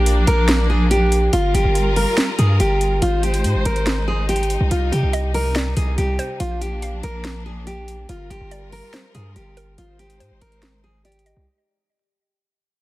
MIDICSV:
0, 0, Header, 1, 6, 480
1, 0, Start_track
1, 0, Tempo, 422535
1, 1511, Time_signature, 4, 2, 24, 8
1, 14558, End_track
2, 0, Start_track
2, 0, Title_t, "Synth pluck"
2, 0, Program_c, 0, 84
2, 5831, Note_on_c, 0, 75, 83
2, 6282, Note_off_c, 0, 75, 0
2, 6314, Note_on_c, 0, 74, 87
2, 6989, Note_off_c, 0, 74, 0
2, 7030, Note_on_c, 0, 72, 84
2, 7259, Note_off_c, 0, 72, 0
2, 7754, Note_on_c, 0, 77, 76
2, 9147, Note_off_c, 0, 77, 0
2, 9671, Note_on_c, 0, 74, 83
2, 10123, Note_off_c, 0, 74, 0
2, 10150, Note_on_c, 0, 72, 79
2, 10828, Note_off_c, 0, 72, 0
2, 10871, Note_on_c, 0, 70, 84
2, 11099, Note_off_c, 0, 70, 0
2, 11590, Note_on_c, 0, 72, 81
2, 12505, Note_off_c, 0, 72, 0
2, 12552, Note_on_c, 0, 74, 75
2, 12780, Note_off_c, 0, 74, 0
2, 12792, Note_on_c, 0, 75, 84
2, 13020, Note_off_c, 0, 75, 0
2, 14558, End_track
3, 0, Start_track
3, 0, Title_t, "Nylon-string guitar"
3, 0, Program_c, 1, 24
3, 0, Note_on_c, 1, 67, 81
3, 282, Note_off_c, 1, 67, 0
3, 311, Note_on_c, 1, 70, 96
3, 762, Note_off_c, 1, 70, 0
3, 792, Note_on_c, 1, 68, 79
3, 1011, Note_off_c, 1, 68, 0
3, 1031, Note_on_c, 1, 67, 82
3, 1482, Note_off_c, 1, 67, 0
3, 1512, Note_on_c, 1, 65, 106
3, 1731, Note_off_c, 1, 65, 0
3, 1752, Note_on_c, 1, 67, 90
3, 2203, Note_off_c, 1, 67, 0
3, 2231, Note_on_c, 1, 70, 83
3, 2682, Note_off_c, 1, 70, 0
3, 2711, Note_on_c, 1, 68, 81
3, 2931, Note_off_c, 1, 68, 0
3, 2951, Note_on_c, 1, 67, 91
3, 3402, Note_off_c, 1, 67, 0
3, 3431, Note_on_c, 1, 65, 107
3, 3650, Note_off_c, 1, 65, 0
3, 3671, Note_on_c, 1, 67, 81
3, 4122, Note_off_c, 1, 67, 0
3, 4152, Note_on_c, 1, 70, 92
3, 4603, Note_off_c, 1, 70, 0
3, 4631, Note_on_c, 1, 68, 83
3, 4851, Note_off_c, 1, 68, 0
3, 4871, Note_on_c, 1, 67, 80
3, 5323, Note_off_c, 1, 67, 0
3, 5352, Note_on_c, 1, 65, 108
3, 5571, Note_off_c, 1, 65, 0
3, 5591, Note_on_c, 1, 67, 86
3, 6042, Note_off_c, 1, 67, 0
3, 6070, Note_on_c, 1, 70, 83
3, 6522, Note_off_c, 1, 70, 0
3, 6551, Note_on_c, 1, 68, 80
3, 6771, Note_off_c, 1, 68, 0
3, 6791, Note_on_c, 1, 67, 95
3, 7243, Note_off_c, 1, 67, 0
3, 7270, Note_on_c, 1, 65, 101
3, 7490, Note_off_c, 1, 65, 0
3, 7511, Note_on_c, 1, 67, 84
3, 7962, Note_off_c, 1, 67, 0
3, 7991, Note_on_c, 1, 70, 94
3, 8442, Note_off_c, 1, 70, 0
3, 8472, Note_on_c, 1, 68, 80
3, 8691, Note_off_c, 1, 68, 0
3, 8711, Note_on_c, 1, 67, 82
3, 9162, Note_off_c, 1, 67, 0
3, 9191, Note_on_c, 1, 65, 105
3, 9411, Note_off_c, 1, 65, 0
3, 9432, Note_on_c, 1, 67, 94
3, 9883, Note_off_c, 1, 67, 0
3, 9911, Note_on_c, 1, 70, 80
3, 10362, Note_off_c, 1, 70, 0
3, 10391, Note_on_c, 1, 68, 82
3, 10610, Note_off_c, 1, 68, 0
3, 10631, Note_on_c, 1, 67, 93
3, 11082, Note_off_c, 1, 67, 0
3, 11111, Note_on_c, 1, 65, 105
3, 11330, Note_off_c, 1, 65, 0
3, 11351, Note_on_c, 1, 67, 83
3, 11802, Note_off_c, 1, 67, 0
3, 11831, Note_on_c, 1, 70, 92
3, 12283, Note_off_c, 1, 70, 0
3, 12311, Note_on_c, 1, 68, 85
3, 12530, Note_off_c, 1, 68, 0
3, 12551, Note_on_c, 1, 67, 83
3, 13002, Note_off_c, 1, 67, 0
3, 14558, End_track
4, 0, Start_track
4, 0, Title_t, "String section"
4, 0, Program_c, 2, 48
4, 0, Note_on_c, 2, 53, 83
4, 0, Note_on_c, 2, 58, 77
4, 0, Note_on_c, 2, 62, 92
4, 1492, Note_off_c, 2, 53, 0
4, 1492, Note_off_c, 2, 58, 0
4, 1492, Note_off_c, 2, 62, 0
4, 1511, Note_on_c, 2, 65, 78
4, 1512, Note_on_c, 2, 55, 84
4, 1512, Note_on_c, 2, 70, 94
4, 3412, Note_off_c, 2, 55, 0
4, 3412, Note_off_c, 2, 65, 0
4, 3412, Note_off_c, 2, 70, 0
4, 3432, Note_on_c, 2, 56, 85
4, 3432, Note_on_c, 2, 63, 78
4, 3432, Note_on_c, 2, 72, 95
4, 5332, Note_off_c, 2, 56, 0
4, 5332, Note_off_c, 2, 72, 0
4, 5351, Note_on_c, 2, 48, 83
4, 5351, Note_on_c, 2, 55, 74
4, 7233, Note_off_c, 2, 63, 0
4, 7252, Note_off_c, 2, 48, 0
4, 7252, Note_off_c, 2, 55, 0
4, 7272, Note_on_c, 2, 53, 85
4, 7272, Note_on_c, 2, 58, 78
4, 7272, Note_on_c, 2, 62, 92
4, 9172, Note_off_c, 2, 53, 0
4, 9172, Note_off_c, 2, 58, 0
4, 9172, Note_off_c, 2, 62, 0
4, 9191, Note_on_c, 2, 55, 85
4, 9191, Note_on_c, 2, 65, 78
4, 9191, Note_on_c, 2, 70, 92
4, 11092, Note_off_c, 2, 55, 0
4, 11092, Note_off_c, 2, 65, 0
4, 11092, Note_off_c, 2, 70, 0
4, 11111, Note_on_c, 2, 63, 76
4, 11111, Note_on_c, 2, 72, 93
4, 11112, Note_on_c, 2, 56, 87
4, 13012, Note_off_c, 2, 56, 0
4, 13012, Note_off_c, 2, 63, 0
4, 13012, Note_off_c, 2, 72, 0
4, 14558, End_track
5, 0, Start_track
5, 0, Title_t, "808-style bass"
5, 0, Program_c, 3, 38
5, 0, Note_on_c, 3, 34, 110
5, 282, Note_off_c, 3, 34, 0
5, 311, Note_on_c, 3, 34, 106
5, 1466, Note_off_c, 3, 34, 0
5, 1511, Note_on_c, 3, 31, 107
5, 1742, Note_off_c, 3, 31, 0
5, 1751, Note_on_c, 3, 31, 104
5, 1867, Note_off_c, 3, 31, 0
5, 1871, Note_on_c, 3, 31, 103
5, 2332, Note_off_c, 3, 31, 0
5, 2711, Note_on_c, 3, 43, 108
5, 2941, Note_off_c, 3, 43, 0
5, 2951, Note_on_c, 3, 31, 107
5, 3412, Note_off_c, 3, 31, 0
5, 3431, Note_on_c, 3, 32, 106
5, 3911, Note_on_c, 3, 44, 100
5, 3928, Note_off_c, 3, 32, 0
5, 4031, Note_on_c, 3, 32, 100
5, 4048, Note_off_c, 3, 44, 0
5, 4145, Note_off_c, 3, 32, 0
5, 4151, Note_on_c, 3, 32, 103
5, 5188, Note_off_c, 3, 32, 0
5, 5231, Note_on_c, 3, 36, 107
5, 5344, Note_off_c, 3, 36, 0
5, 5351, Note_on_c, 3, 36, 110
5, 5581, Note_off_c, 3, 36, 0
5, 5591, Note_on_c, 3, 48, 105
5, 5704, Note_off_c, 3, 48, 0
5, 5711, Note_on_c, 3, 36, 103
5, 6517, Note_off_c, 3, 36, 0
5, 6551, Note_on_c, 3, 36, 108
5, 6781, Note_off_c, 3, 36, 0
5, 6791, Note_on_c, 3, 36, 105
5, 7021, Note_off_c, 3, 36, 0
5, 7271, Note_on_c, 3, 34, 110
5, 7962, Note_off_c, 3, 34, 0
5, 7991, Note_on_c, 3, 34, 108
5, 9146, Note_off_c, 3, 34, 0
5, 9191, Note_on_c, 3, 31, 116
5, 9422, Note_off_c, 3, 31, 0
5, 9431, Note_on_c, 3, 31, 105
5, 9546, Note_off_c, 3, 31, 0
5, 9551, Note_on_c, 3, 31, 108
5, 10012, Note_off_c, 3, 31, 0
5, 10391, Note_on_c, 3, 43, 106
5, 10622, Note_off_c, 3, 43, 0
5, 10631, Note_on_c, 3, 31, 110
5, 11092, Note_off_c, 3, 31, 0
5, 11111, Note_on_c, 3, 32, 108
5, 11591, Note_on_c, 3, 44, 99
5, 11608, Note_off_c, 3, 32, 0
5, 11712, Note_on_c, 3, 32, 101
5, 11729, Note_off_c, 3, 44, 0
5, 11826, Note_off_c, 3, 32, 0
5, 11831, Note_on_c, 3, 32, 106
5, 12868, Note_off_c, 3, 32, 0
5, 12911, Note_on_c, 3, 36, 102
5, 13026, Note_off_c, 3, 36, 0
5, 14558, End_track
6, 0, Start_track
6, 0, Title_t, "Drums"
6, 72, Note_on_c, 9, 42, 88
6, 185, Note_off_c, 9, 42, 0
6, 311, Note_on_c, 9, 42, 79
6, 425, Note_off_c, 9, 42, 0
6, 551, Note_on_c, 9, 38, 117
6, 551, Note_on_c, 9, 42, 77
6, 665, Note_off_c, 9, 38, 0
6, 665, Note_off_c, 9, 42, 0
6, 1032, Note_on_c, 9, 42, 74
6, 1146, Note_off_c, 9, 42, 0
6, 1271, Note_on_c, 9, 42, 75
6, 1385, Note_off_c, 9, 42, 0
6, 1510, Note_on_c, 9, 42, 93
6, 1624, Note_off_c, 9, 42, 0
6, 1756, Note_on_c, 9, 42, 75
6, 1870, Note_off_c, 9, 42, 0
6, 1992, Note_on_c, 9, 42, 84
6, 2105, Note_off_c, 9, 42, 0
6, 2231, Note_on_c, 9, 46, 63
6, 2345, Note_off_c, 9, 46, 0
6, 2471, Note_on_c, 9, 38, 115
6, 2471, Note_on_c, 9, 42, 78
6, 2585, Note_off_c, 9, 38, 0
6, 2585, Note_off_c, 9, 42, 0
6, 2710, Note_on_c, 9, 42, 87
6, 2824, Note_off_c, 9, 42, 0
6, 2952, Note_on_c, 9, 42, 72
6, 3066, Note_off_c, 9, 42, 0
6, 3192, Note_on_c, 9, 42, 71
6, 3305, Note_off_c, 9, 42, 0
6, 3431, Note_on_c, 9, 42, 94
6, 3544, Note_off_c, 9, 42, 0
6, 3671, Note_on_c, 9, 42, 61
6, 3785, Note_off_c, 9, 42, 0
6, 3791, Note_on_c, 9, 42, 59
6, 3905, Note_off_c, 9, 42, 0
6, 3912, Note_on_c, 9, 42, 84
6, 4025, Note_off_c, 9, 42, 0
6, 4151, Note_on_c, 9, 42, 83
6, 4265, Note_off_c, 9, 42, 0
6, 4271, Note_on_c, 9, 42, 49
6, 4385, Note_off_c, 9, 42, 0
6, 4392, Note_on_c, 9, 38, 115
6, 4392, Note_on_c, 9, 42, 80
6, 4505, Note_off_c, 9, 38, 0
6, 4505, Note_off_c, 9, 42, 0
6, 4871, Note_on_c, 9, 42, 73
6, 4951, Note_off_c, 9, 42, 0
6, 4951, Note_on_c, 9, 42, 58
6, 5031, Note_off_c, 9, 42, 0
6, 5031, Note_on_c, 9, 42, 45
6, 5112, Note_off_c, 9, 42, 0
6, 5112, Note_on_c, 9, 42, 74
6, 5225, Note_off_c, 9, 42, 0
6, 5351, Note_on_c, 9, 42, 93
6, 5464, Note_off_c, 9, 42, 0
6, 5596, Note_on_c, 9, 42, 73
6, 5710, Note_off_c, 9, 42, 0
6, 5832, Note_on_c, 9, 42, 87
6, 5945, Note_off_c, 9, 42, 0
6, 6071, Note_on_c, 9, 46, 64
6, 6185, Note_off_c, 9, 46, 0
6, 6312, Note_on_c, 9, 38, 114
6, 6312, Note_on_c, 9, 42, 79
6, 6425, Note_off_c, 9, 38, 0
6, 6425, Note_off_c, 9, 42, 0
6, 6550, Note_on_c, 9, 42, 81
6, 6664, Note_off_c, 9, 42, 0
6, 6792, Note_on_c, 9, 42, 72
6, 6906, Note_off_c, 9, 42, 0
6, 7031, Note_on_c, 9, 42, 67
6, 7145, Note_off_c, 9, 42, 0
6, 7271, Note_on_c, 9, 42, 99
6, 7384, Note_off_c, 9, 42, 0
6, 7516, Note_on_c, 9, 42, 71
6, 7630, Note_off_c, 9, 42, 0
6, 7751, Note_on_c, 9, 42, 85
6, 7865, Note_off_c, 9, 42, 0
6, 7991, Note_on_c, 9, 42, 84
6, 8104, Note_off_c, 9, 42, 0
6, 8231, Note_on_c, 9, 38, 116
6, 8231, Note_on_c, 9, 42, 81
6, 8345, Note_off_c, 9, 38, 0
6, 8345, Note_off_c, 9, 42, 0
6, 8712, Note_on_c, 9, 42, 75
6, 8825, Note_off_c, 9, 42, 0
6, 8951, Note_on_c, 9, 42, 76
6, 9065, Note_off_c, 9, 42, 0
6, 9190, Note_on_c, 9, 42, 94
6, 9304, Note_off_c, 9, 42, 0
6, 9436, Note_on_c, 9, 42, 70
6, 9550, Note_off_c, 9, 42, 0
6, 9672, Note_on_c, 9, 42, 88
6, 9785, Note_off_c, 9, 42, 0
6, 9911, Note_on_c, 9, 46, 64
6, 10025, Note_off_c, 9, 46, 0
6, 10152, Note_on_c, 9, 38, 117
6, 10152, Note_on_c, 9, 42, 79
6, 10265, Note_off_c, 9, 38, 0
6, 10265, Note_off_c, 9, 42, 0
6, 10390, Note_on_c, 9, 42, 86
6, 10504, Note_off_c, 9, 42, 0
6, 10632, Note_on_c, 9, 42, 73
6, 10746, Note_off_c, 9, 42, 0
6, 10871, Note_on_c, 9, 42, 69
6, 10985, Note_off_c, 9, 42, 0
6, 11110, Note_on_c, 9, 42, 93
6, 11224, Note_off_c, 9, 42, 0
6, 11351, Note_on_c, 9, 42, 61
6, 11465, Note_off_c, 9, 42, 0
6, 11471, Note_on_c, 9, 42, 59
6, 11585, Note_off_c, 9, 42, 0
6, 11592, Note_on_c, 9, 42, 88
6, 11705, Note_off_c, 9, 42, 0
6, 11831, Note_on_c, 9, 42, 81
6, 11945, Note_off_c, 9, 42, 0
6, 11951, Note_on_c, 9, 42, 50
6, 12065, Note_off_c, 9, 42, 0
6, 12072, Note_on_c, 9, 38, 113
6, 12072, Note_on_c, 9, 42, 79
6, 12185, Note_off_c, 9, 38, 0
6, 12185, Note_off_c, 9, 42, 0
6, 12551, Note_on_c, 9, 42, 75
6, 12631, Note_off_c, 9, 42, 0
6, 12631, Note_on_c, 9, 42, 60
6, 12711, Note_off_c, 9, 42, 0
6, 12711, Note_on_c, 9, 42, 44
6, 12792, Note_off_c, 9, 42, 0
6, 12792, Note_on_c, 9, 42, 73
6, 12905, Note_off_c, 9, 42, 0
6, 14558, End_track
0, 0, End_of_file